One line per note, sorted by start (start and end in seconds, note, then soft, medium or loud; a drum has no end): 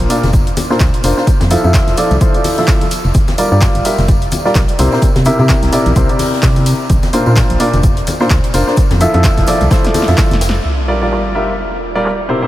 0.00 0.07 A#1 medium
0.00 tambourine soft
0.10 0.26 A#2 medium
0.10 0.26 D4 medium
0.10 0.26 F4 medium
0.10 0.26 A#4 medium
0.10 0.26 D5 medium
0.10 open hi-hat loud
0.10 tambourine medium
0.10 shaker medium
0.23 0.53 F1 medium
0.23 snare soft
0.23 closed hi-hat soft
0.23 tambourine soft
0.23 high conga medium
0.33 kick loud
0.33 closed hi-hat medium
0.33 tambourine soft
0.33 shaker medium
0.47 closed hi-hat soft
0.47 tambourine soft
0.57 open hi-hat loud
0.57 tambourine medium
0.57 high conga medium
0.57 shaker medium
0.70 0.84 A#2 medium
0.70 0.84 D4 medium
0.70 0.84 F4 medium
0.70 0.84 A#4 medium
0.70 0.84 C5 loud
0.70 snare soft
0.70 tambourine soft
0.80 0.90 D2 loud
0.80 kick loud
0.80 snare loud
0.80 clap loud
0.80 closed hi-hat medium
0.80 tambourine medium
0.80 shaker medium
0.94 closed hi-hat soft
0.94 tambourine soft
1.04 1.13 F1 medium
1.04 1.15 D4 medium
1.04 1.15 F4 medium
1.04 1.15 A#4 medium
1.04 1.15 C5 medium
1.04 open hi-hat loud
1.04 tambourine loud
1.04 shaker medium
1.17 1.26 D4 medium
1.17 1.26 F4 medium
1.17 1.26 A#4 medium
1.17 1.26 C5 medium
1.17 snare soft
1.17 tambourine soft
1.27 kick loud
1.27 closed hi-hat medium
1.27 tambourine soft
1.27 shaker medium
1.40 1.57 F2 medium
1.40 snare medium
1.40 closed hi-hat soft
1.40 tambourine soft
1.40 high conga medium
1.50 1.61 F3 loud
1.50 1.61 E4 medium
1.50 1.61 F4 medium
1.50 1.61 A4 medium
1.50 1.61 E5 loud
1.50 open hi-hat loud
1.50 tambourine medium
1.50 shaker medium
1.64 1.80 F2 medium
1.64 1.95 F3 medium
1.64 1.95 E4 medium
1.64 1.95 F4 medium
1.64 1.95 A4 medium
1.64 1.95 E5 loud
1.64 tambourine soft
1.74 kick loud
1.74 snare loud
1.74 clap loud
1.74 closed hi-hat medium
1.74 shaker medium
1.87 1.95 F1 medium
1.87 snare soft
1.87 closed hi-hat soft
1.87 tambourine soft
1.97 2.14 F3 medium
1.97 2.14 E4 medium
1.97 2.14 F4 medium
1.97 2.14 A4 medium
1.97 2.14 D5 medium
1.97 open hi-hat loud
1.97 tambourine medium
1.97 shaker medium
2.11 2.18 C2 loud
2.11 closed hi-hat soft
2.11 tambourine soft
2.11 high conga medium
2.21 2.32 F3 loud
2.21 2.32 E4 medium
2.21 2.33 F4 medium
2.21 2.32 A4 medium
2.21 2.32 C5 loud
2.21 kick loud
2.21 closed hi-hat medium
2.21 tambourine soft
2.21 shaker medium
2.34 2.55 F3 medium
2.34 2.55 E4 medium
2.34 2.55 F4 medium
2.34 2.55 A4 medium
2.34 2.55 D5 medium
2.34 closed hi-hat soft
2.34 tambourine soft
2.44 open hi-hat loud
2.44 open hi-hat medium
2.44 tambourine medium
2.44 high conga medium
2.57 2.82 F3 medium
2.57 2.82 E4 medium
2.57 2.82 F4 medium
2.57 2.82 A4 medium
2.57 2.82 E5 medium
2.57 snare soft
2.57 closed hi-hat soft
2.57 tambourine soft
2.67 kick loud
2.67 snare loud
2.67 clap loud
2.67 closed hi-hat medium
2.67 tambourine medium
2.67 shaker medium
2.81 closed hi-hat medium
2.81 tambourine soft
2.81 high conga medium
2.91 open hi-hat loud
2.91 tambourine medium
2.91 shaker medium
3.04 3.12 F1 medium
3.04 tambourine soft
3.14 3.24 G1 loud
3.14 kick loud
3.14 closed hi-hat medium
3.14 tambourine medium
3.14 shaker medium
3.28 snare medium
3.28 closed hi-hat soft
3.28 tambourine soft
3.28 high conga medium
3.38 3.50 G3 medium
3.38 3.50 F4 medium
3.38 3.50 G4 medium
3.38 3.50 A#4 medium
3.38 3.50 D5 medium
3.38 open hi-hat loud
3.38 tambourine loud
3.38 shaker medium
3.52 3.68 G2 medium
3.52 3.83 G3 medium
3.52 3.83 F4 medium
3.52 3.83 G4 medium
3.52 3.83 A#4 medium
3.52 3.83 D5 medium
3.52 tambourine soft
3.61 kick loud
3.61 snare loud
3.61 clap loud
3.61 closed hi-hat medium
3.61 shaker medium
3.74 3.82 G1 medium
3.74 closed hi-hat soft
3.74 tambourine soft
3.85 4.01 G3 medium
3.85 4.01 F4 medium
3.85 4.01 G4 medium
3.85 4.01 A#4 medium
3.85 4.01 E5 medium
3.85 open hi-hat loud
3.85 tambourine medium
3.85 shaker medium
3.98 4.27 F1 loud
3.98 snare soft
3.98 closed hi-hat soft
3.98 tambourine soft
3.98 high conga medium
4.08 kick loud
4.08 closed hi-hat medium
4.08 tambourine medium
4.08 shaker medium
4.22 closed hi-hat soft
4.22 tambourine soft
4.31 open hi-hat loud
4.31 tambourine medium
4.31 high conga medium
4.31 shaker medium
4.45 4.59 G3 medium
4.45 4.59 F4 medium
4.45 4.59 G4 medium
4.45 4.59 A#4 medium
4.45 4.59 D5 loud
4.45 snare soft
4.45 tambourine soft
4.55 4.65 A#1 loud
4.55 kick loud
4.55 snare loud
4.55 clap loud
4.55 closed hi-hat medium
4.55 tambourine medium
4.55 shaker medium
4.68 closed hi-hat soft
4.68 tambourine soft
4.79 4.88 C2 medium
4.79 4.90 C3 medium
4.79 4.90 E4 medium
4.79 4.90 G4 medium
4.79 4.90 A#4 medium
4.79 4.90 C5 medium
4.79 open hi-hat loud
4.79 tambourine medium
4.79 shaker medium
4.92 5.06 C3 medium
4.92 5.06 E4 medium
4.92 5.06 G4 medium
4.92 5.06 A#4 medium
4.92 5.06 C5 medium
4.92 snare medium
4.92 tambourine soft
5.02 kick loud
5.02 closed hi-hat medium
5.02 tambourine medium
5.02 shaker medium
5.15 5.32 C3 medium
5.15 snare medium
5.15 closed hi-hat medium
5.15 tambourine soft
5.15 high conga medium
5.25 5.36 C3 loud
5.25 5.36 E4 medium
5.25 5.36 G4 medium
5.25 5.36 A#4 medium
5.25 5.36 E5 loud
5.25 open hi-hat medium
5.25 tambourine medium
5.25 shaker medium
5.39 5.55 C3 medium
5.39 5.70 C3 medium
5.39 5.70 E4 medium
5.39 5.70 G4 medium
5.39 5.70 A#4 medium
5.39 5.70 E5 loud
5.39 tambourine soft
5.48 kick loud
5.48 snare loud
5.48 clap loud
5.48 closed hi-hat medium
5.48 tambourine medium
5.48 shaker medium
5.62 5.70 C2 medium
5.62 snare soft
5.62 closed hi-hat soft
5.72 5.89 C3 medium
5.72 5.89 E4 medium
5.72 5.89 G4 medium
5.72 5.89 A#4 medium
5.72 5.89 D5 loud
5.72 open hi-hat loud
5.72 tambourine medium
5.72 shaker medium
5.86 5.93 A#1 medium
5.86 closed hi-hat soft
5.86 tambourine soft
5.86 high conga medium
5.96 6.06 C2 loud
5.96 6.07 C3 loud
5.96 6.07 E4 medium
5.96 6.07 G4 medium
5.96 6.07 A#4 medium
5.96 6.07 C5 loud
5.96 kick loud
5.96 closed hi-hat medium
5.96 tambourine soft
5.96 shaker medium
6.09 6.89 C3 medium
6.09 6.89 E4 medium
6.09 6.89 G4 medium
6.09 6.89 A#4 medium
6.09 6.89 D5 medium
6.09 closed hi-hat soft
6.09 tambourine soft
6.19 open hi-hat loud
6.19 open hi-hat medium
6.19 tambourine medium
6.19 high conga medium
6.33 snare soft
6.33 tambourine soft
6.43 6.74 C3 loud
6.43 kick loud
6.43 snare loud
6.43 clap loud
6.43 closed hi-hat medium
6.43 tambourine soft
6.43 shaker medium
6.56 closed hi-hat medium
6.56 tambourine soft
6.56 high conga medium
6.66 open hi-hat loud
6.66 tambourine medium
6.66 shaker medium
6.80 tambourine soft
6.90 6.99 A#1 loud
6.90 kick loud
6.90 closed hi-hat medium
6.90 tambourine soft
6.90 shaker medium
7.03 snare soft
7.03 closed hi-hat medium
7.03 tambourine soft
7.03 high conga medium
7.13 7.25 A#2 medium
7.13 7.25 D4 medium
7.13 7.25 F4 medium
7.13 7.25 A#4 medium
7.13 7.25 C5 medium
7.13 open hi-hat medium
7.13 tambourine medium
7.13 shaker medium
7.26 7.42 A#2 medium
7.26 7.58 A#2 medium
7.26 7.58 D4 medium
7.26 7.58 F4 medium
7.26 7.58 A#4 medium
7.26 7.58 C5 medium
7.26 tambourine soft
7.36 kick loud
7.36 snare loud
7.36 clap loud
7.36 closed hi-hat medium
7.36 tambourine soft
7.36 shaker medium
7.50 7.57 A#1 medium
7.50 closed hi-hat medium
7.50 tambourine soft
7.60 7.76 A#2 medium
7.60 7.76 D4 medium
7.60 7.76 F4 medium
7.60 7.76 A#4 medium
7.60 7.76 D5 medium
7.60 open hi-hat loud
7.60 tambourine medium
7.73 8.02 F1 loud
7.73 closed hi-hat soft
7.73 tambourine soft
7.73 high conga medium
7.83 kick loud
7.83 closed hi-hat medium
7.83 tambourine medium
7.83 shaker medium
7.97 closed hi-hat medium
7.97 closed hi-hat soft
7.97 tambourine soft
8.07 open hi-hat loud
8.07 tambourine medium
8.07 high conga medium
8.07 shaker medium
8.20 8.34 A#2 medium
8.20 8.34 D4 medium
8.20 8.34 F4 medium
8.20 8.34 A#4 medium
8.20 8.34 C5 loud
8.20 snare soft
8.20 tambourine soft
8.30 8.40 D2 loud
8.30 kick loud
8.30 snare loud
8.30 clap loud
8.30 closed hi-hat medium
8.30 tambourine soft
8.30 shaker medium
8.44 closed hi-hat medium
8.44 closed hi-hat soft
8.44 tambourine soft
8.54 8.64 F1 medium
8.54 8.65 D4 medium
8.54 8.65 F4 medium
8.54 8.65 A#4 medium
8.54 8.65 C5 medium
8.54 open hi-hat loud
8.54 tambourine medium
8.54 shaker medium
8.67 8.76 D4 medium
8.67 8.76 F4 medium
8.67 8.76 A#4 medium
8.67 8.76 C5 medium
8.67 snare medium
8.67 tambourine soft
8.77 kick loud
8.77 closed hi-hat medium
8.77 tambourine soft
8.77 shaker medium
8.90 9.07 F2 medium
8.90 snare medium
8.90 closed hi-hat medium
8.90 tambourine soft
8.90 high conga medium
9.01 9.11 F3 loud
9.01 9.11 E4 medium
9.01 9.11 F4 medium
9.01 9.11 A4 medium
9.01 9.11 E5 loud
9.01 open hi-hat loud
9.01 tambourine loud
9.01 shaker medium
9.14 9.30 F2 medium
9.14 9.45 F3 medium
9.14 9.45 E4 medium
9.14 9.45 F4 medium
9.14 9.45 A4 medium
9.14 9.45 E5 loud
9.14 closed hi-hat soft
9.14 tambourine soft
9.24 kick loud
9.24 snare loud
9.24 clap loud
9.24 closed hi-hat medium
9.24 tambourine medium
9.24 shaker medium
9.37 9.45 F1 medium
9.37 kick medium
9.37 snare soft
9.37 closed hi-hat medium
9.37 tambourine soft
9.47 9.64 F3 medium
9.47 9.64 E4 medium
9.47 9.64 F4 medium
9.47 9.64 A4 medium
9.47 9.64 D5 loud
9.47 open hi-hat loud
9.47 tambourine medium
9.47 shaker medium
9.61 9.68 C2 loud
9.61 closed hi-hat soft
9.61 tambourine soft
9.61 high conga medium
9.70 9.82 F3 medium
9.70 9.82 E4 medium
9.70 9.82 F4 medium
9.70 9.82 A4 medium
9.70 9.82 C5 loud
9.70 kick loud
9.70 snare loud
9.70 snare medium
9.70 closed hi-hat medium
9.70 tambourine soft
9.70 shaker medium
9.84 10.05 F3 medium
9.84 10.05 E4 medium
9.84 10.05 F4 medium
9.84 10.05 A4 medium
9.84 10.05 D5 medium
9.84 snare medium
9.84 closed hi-hat medium
9.84 tambourine soft
9.94 open hi-hat loud
9.94 open hi-hat medium
9.94 tambourine medium
9.94 high conga medium
10.02 snare medium
10.08 10.15 F2 medium
10.08 10.32 F3 medium
10.08 10.32 E4 medium
10.08 10.32 F4 medium
10.08 10.32 A4 medium
10.08 10.32 E5 loud
10.08 snare soft
10.08 closed hi-hat soft
10.08 tambourine soft
10.18 kick loud
10.18 snare loud
10.18 snare medium
10.18 clap loud
10.18 closed hi-hat medium
10.18 tambourine soft
10.18 shaker medium
10.31 10.60 F1 loud
10.31 snare loud
10.31 closed hi-hat medium
10.31 tambourine soft
10.31 high conga medium
10.41 snare loud
10.41 open hi-hat loud
10.41 tambourine medium
10.41 shaker medium
10.49 snare loud
10.55 tambourine soft
10.65 sub drop medium
10.88 11.00 G3 medium
10.88 11.00 F4 medium
10.88 11.00 G4 medium
10.88 11.00 A#4 medium
10.88 11.00 D5 medium
11.02 11.33 G3 medium
11.02 11.33 F4 medium
11.02 11.33 G4 medium
11.02 11.33 A#4 medium
11.02 11.33 D5 medium
11.11 clap loud
11.35 11.51 G3 medium
11.35 11.51 F4 medium
11.35 11.51 G4 medium
11.35 11.51 A#4 medium
11.35 11.51 E5 medium
11.95 12.09 G3 medium
11.95 12.09 F4 medium
11.95 12.09 G4 medium
11.95 12.09 A#4 medium
11.95 12.09 D5 medium
12.05 clap loud
12.29 12.40 C3 medium
12.29 12.40 E4 medium
12.29 12.40 G4 medium
12.29 12.40 A#4 medium
12.29 12.40 C5 medium
12.42 12.47 C3 medium
12.42 12.47 E4 medium
12.42 12.47 G4 medium
12.42 12.47 A#4 medium
12.42 12.47 C5 medium